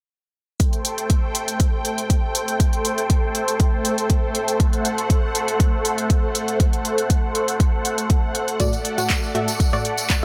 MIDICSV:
0, 0, Header, 1, 4, 480
1, 0, Start_track
1, 0, Tempo, 500000
1, 576, Time_signature, 4, 2, 24, 8
1, 9838, End_track
2, 0, Start_track
2, 0, Title_t, "Supersaw synth"
2, 0, Program_c, 0, 81
2, 574, Note_on_c, 0, 79, 88
2, 575, Note_on_c, 0, 57, 79
2, 575, Note_on_c, 0, 69, 68
2, 575, Note_on_c, 0, 72, 71
2, 4377, Note_off_c, 0, 79, 0
2, 8217, Note_off_c, 0, 57, 0
2, 8217, Note_off_c, 0, 69, 0
2, 8217, Note_off_c, 0, 72, 0
2, 8256, Note_on_c, 0, 69, 75
2, 8256, Note_on_c, 0, 74, 74
2, 9838, Note_off_c, 0, 69, 0
2, 9838, Note_off_c, 0, 74, 0
2, 9838, End_track
3, 0, Start_track
3, 0, Title_t, "Synth pluck"
3, 0, Program_c, 1, 84
3, 8255, Note_on_c, 1, 45, 91
3, 8255, Note_on_c, 1, 57, 85
3, 8255, Note_on_c, 1, 66, 87
3, 8255, Note_on_c, 1, 74, 100
3, 8371, Note_off_c, 1, 45, 0
3, 8371, Note_off_c, 1, 57, 0
3, 8371, Note_off_c, 1, 66, 0
3, 8371, Note_off_c, 1, 74, 0
3, 8621, Note_on_c, 1, 45, 90
3, 8621, Note_on_c, 1, 57, 78
3, 8621, Note_on_c, 1, 66, 80
3, 8621, Note_on_c, 1, 78, 96
3, 8725, Note_off_c, 1, 45, 0
3, 8725, Note_off_c, 1, 57, 0
3, 8725, Note_off_c, 1, 66, 0
3, 8725, Note_off_c, 1, 78, 0
3, 8974, Note_on_c, 1, 45, 90
3, 8974, Note_on_c, 1, 57, 84
3, 8974, Note_on_c, 1, 76, 99
3, 8975, Note_on_c, 1, 66, 85
3, 9091, Note_off_c, 1, 45, 0
3, 9091, Note_off_c, 1, 57, 0
3, 9091, Note_off_c, 1, 66, 0
3, 9091, Note_off_c, 1, 76, 0
3, 9341, Note_on_c, 1, 66, 86
3, 9342, Note_on_c, 1, 45, 96
3, 9342, Note_on_c, 1, 57, 86
3, 9342, Note_on_c, 1, 74, 110
3, 9445, Note_off_c, 1, 66, 0
3, 9446, Note_off_c, 1, 45, 0
3, 9446, Note_off_c, 1, 57, 0
3, 9446, Note_off_c, 1, 74, 0
3, 9838, End_track
4, 0, Start_track
4, 0, Title_t, "Drums"
4, 575, Note_on_c, 9, 36, 111
4, 575, Note_on_c, 9, 42, 76
4, 671, Note_off_c, 9, 36, 0
4, 671, Note_off_c, 9, 42, 0
4, 701, Note_on_c, 9, 42, 36
4, 797, Note_off_c, 9, 42, 0
4, 814, Note_on_c, 9, 42, 79
4, 910, Note_off_c, 9, 42, 0
4, 941, Note_on_c, 9, 42, 54
4, 1037, Note_off_c, 9, 42, 0
4, 1054, Note_on_c, 9, 42, 78
4, 1055, Note_on_c, 9, 36, 100
4, 1150, Note_off_c, 9, 42, 0
4, 1151, Note_off_c, 9, 36, 0
4, 1294, Note_on_c, 9, 42, 81
4, 1390, Note_off_c, 9, 42, 0
4, 1421, Note_on_c, 9, 42, 54
4, 1517, Note_off_c, 9, 42, 0
4, 1534, Note_on_c, 9, 42, 83
4, 1535, Note_on_c, 9, 36, 118
4, 1630, Note_off_c, 9, 42, 0
4, 1631, Note_off_c, 9, 36, 0
4, 1775, Note_on_c, 9, 42, 76
4, 1871, Note_off_c, 9, 42, 0
4, 1902, Note_on_c, 9, 42, 49
4, 1998, Note_off_c, 9, 42, 0
4, 2015, Note_on_c, 9, 36, 100
4, 2015, Note_on_c, 9, 42, 73
4, 2111, Note_off_c, 9, 36, 0
4, 2111, Note_off_c, 9, 42, 0
4, 2255, Note_on_c, 9, 42, 81
4, 2351, Note_off_c, 9, 42, 0
4, 2382, Note_on_c, 9, 42, 52
4, 2478, Note_off_c, 9, 42, 0
4, 2494, Note_on_c, 9, 36, 114
4, 2495, Note_on_c, 9, 42, 73
4, 2590, Note_off_c, 9, 36, 0
4, 2591, Note_off_c, 9, 42, 0
4, 2621, Note_on_c, 9, 42, 35
4, 2717, Note_off_c, 9, 42, 0
4, 2734, Note_on_c, 9, 42, 75
4, 2830, Note_off_c, 9, 42, 0
4, 2860, Note_on_c, 9, 42, 49
4, 2956, Note_off_c, 9, 42, 0
4, 2974, Note_on_c, 9, 42, 77
4, 2975, Note_on_c, 9, 36, 100
4, 3070, Note_off_c, 9, 42, 0
4, 3071, Note_off_c, 9, 36, 0
4, 3214, Note_on_c, 9, 42, 75
4, 3310, Note_off_c, 9, 42, 0
4, 3341, Note_on_c, 9, 42, 50
4, 3437, Note_off_c, 9, 42, 0
4, 3454, Note_on_c, 9, 36, 118
4, 3454, Note_on_c, 9, 42, 79
4, 3550, Note_off_c, 9, 36, 0
4, 3550, Note_off_c, 9, 42, 0
4, 3694, Note_on_c, 9, 42, 76
4, 3790, Note_off_c, 9, 42, 0
4, 3821, Note_on_c, 9, 42, 48
4, 3917, Note_off_c, 9, 42, 0
4, 3933, Note_on_c, 9, 42, 74
4, 3935, Note_on_c, 9, 36, 101
4, 4029, Note_off_c, 9, 42, 0
4, 4031, Note_off_c, 9, 36, 0
4, 4174, Note_on_c, 9, 42, 80
4, 4270, Note_off_c, 9, 42, 0
4, 4301, Note_on_c, 9, 42, 51
4, 4397, Note_off_c, 9, 42, 0
4, 4415, Note_on_c, 9, 36, 120
4, 4415, Note_on_c, 9, 42, 73
4, 4511, Note_off_c, 9, 36, 0
4, 4511, Note_off_c, 9, 42, 0
4, 4542, Note_on_c, 9, 42, 34
4, 4638, Note_off_c, 9, 42, 0
4, 4655, Note_on_c, 9, 42, 72
4, 4751, Note_off_c, 9, 42, 0
4, 4783, Note_on_c, 9, 42, 49
4, 4879, Note_off_c, 9, 42, 0
4, 4895, Note_on_c, 9, 36, 103
4, 4896, Note_on_c, 9, 42, 78
4, 4991, Note_off_c, 9, 36, 0
4, 4992, Note_off_c, 9, 42, 0
4, 5135, Note_on_c, 9, 42, 73
4, 5231, Note_off_c, 9, 42, 0
4, 5262, Note_on_c, 9, 42, 49
4, 5358, Note_off_c, 9, 42, 0
4, 5375, Note_on_c, 9, 36, 118
4, 5375, Note_on_c, 9, 42, 76
4, 5471, Note_off_c, 9, 36, 0
4, 5471, Note_off_c, 9, 42, 0
4, 5615, Note_on_c, 9, 42, 73
4, 5711, Note_off_c, 9, 42, 0
4, 5742, Note_on_c, 9, 42, 47
4, 5838, Note_off_c, 9, 42, 0
4, 5855, Note_on_c, 9, 36, 107
4, 5855, Note_on_c, 9, 42, 68
4, 5951, Note_off_c, 9, 36, 0
4, 5951, Note_off_c, 9, 42, 0
4, 6096, Note_on_c, 9, 42, 76
4, 6192, Note_off_c, 9, 42, 0
4, 6222, Note_on_c, 9, 42, 49
4, 6318, Note_off_c, 9, 42, 0
4, 6335, Note_on_c, 9, 36, 113
4, 6335, Note_on_c, 9, 42, 71
4, 6431, Note_off_c, 9, 36, 0
4, 6431, Note_off_c, 9, 42, 0
4, 6462, Note_on_c, 9, 42, 35
4, 6558, Note_off_c, 9, 42, 0
4, 6575, Note_on_c, 9, 42, 70
4, 6671, Note_off_c, 9, 42, 0
4, 6702, Note_on_c, 9, 42, 50
4, 6798, Note_off_c, 9, 42, 0
4, 6815, Note_on_c, 9, 36, 103
4, 6815, Note_on_c, 9, 42, 73
4, 6911, Note_off_c, 9, 36, 0
4, 6911, Note_off_c, 9, 42, 0
4, 7056, Note_on_c, 9, 42, 70
4, 7152, Note_off_c, 9, 42, 0
4, 7182, Note_on_c, 9, 42, 49
4, 7278, Note_off_c, 9, 42, 0
4, 7295, Note_on_c, 9, 36, 121
4, 7296, Note_on_c, 9, 42, 74
4, 7391, Note_off_c, 9, 36, 0
4, 7392, Note_off_c, 9, 42, 0
4, 7535, Note_on_c, 9, 42, 69
4, 7631, Note_off_c, 9, 42, 0
4, 7661, Note_on_c, 9, 42, 48
4, 7757, Note_off_c, 9, 42, 0
4, 7774, Note_on_c, 9, 42, 70
4, 7775, Note_on_c, 9, 36, 108
4, 7870, Note_off_c, 9, 42, 0
4, 7871, Note_off_c, 9, 36, 0
4, 8014, Note_on_c, 9, 42, 72
4, 8110, Note_off_c, 9, 42, 0
4, 8141, Note_on_c, 9, 42, 49
4, 8237, Note_off_c, 9, 42, 0
4, 8254, Note_on_c, 9, 42, 73
4, 8255, Note_on_c, 9, 36, 110
4, 8258, Note_on_c, 9, 54, 67
4, 8350, Note_off_c, 9, 42, 0
4, 8351, Note_off_c, 9, 36, 0
4, 8354, Note_off_c, 9, 54, 0
4, 8381, Note_on_c, 9, 42, 34
4, 8389, Note_on_c, 9, 54, 38
4, 8477, Note_off_c, 9, 42, 0
4, 8485, Note_off_c, 9, 54, 0
4, 8495, Note_on_c, 9, 42, 73
4, 8591, Note_off_c, 9, 42, 0
4, 8620, Note_on_c, 9, 54, 83
4, 8622, Note_on_c, 9, 42, 49
4, 8716, Note_off_c, 9, 54, 0
4, 8718, Note_off_c, 9, 42, 0
4, 8734, Note_on_c, 9, 39, 114
4, 8735, Note_on_c, 9, 36, 101
4, 8735, Note_on_c, 9, 42, 74
4, 8736, Note_on_c, 9, 54, 63
4, 8830, Note_off_c, 9, 39, 0
4, 8831, Note_off_c, 9, 36, 0
4, 8831, Note_off_c, 9, 42, 0
4, 8832, Note_off_c, 9, 54, 0
4, 8863, Note_on_c, 9, 54, 35
4, 8959, Note_off_c, 9, 54, 0
4, 8976, Note_on_c, 9, 42, 76
4, 9072, Note_off_c, 9, 42, 0
4, 9099, Note_on_c, 9, 54, 76
4, 9102, Note_on_c, 9, 42, 49
4, 9195, Note_off_c, 9, 54, 0
4, 9198, Note_off_c, 9, 42, 0
4, 9215, Note_on_c, 9, 36, 116
4, 9216, Note_on_c, 9, 42, 75
4, 9219, Note_on_c, 9, 54, 56
4, 9311, Note_off_c, 9, 36, 0
4, 9312, Note_off_c, 9, 42, 0
4, 9315, Note_off_c, 9, 54, 0
4, 9340, Note_on_c, 9, 54, 39
4, 9436, Note_off_c, 9, 54, 0
4, 9455, Note_on_c, 9, 42, 72
4, 9551, Note_off_c, 9, 42, 0
4, 9576, Note_on_c, 9, 54, 80
4, 9582, Note_on_c, 9, 42, 47
4, 9672, Note_off_c, 9, 54, 0
4, 9678, Note_off_c, 9, 42, 0
4, 9694, Note_on_c, 9, 54, 65
4, 9695, Note_on_c, 9, 36, 100
4, 9695, Note_on_c, 9, 39, 103
4, 9696, Note_on_c, 9, 42, 70
4, 9790, Note_off_c, 9, 54, 0
4, 9791, Note_off_c, 9, 36, 0
4, 9791, Note_off_c, 9, 39, 0
4, 9792, Note_off_c, 9, 42, 0
4, 9838, End_track
0, 0, End_of_file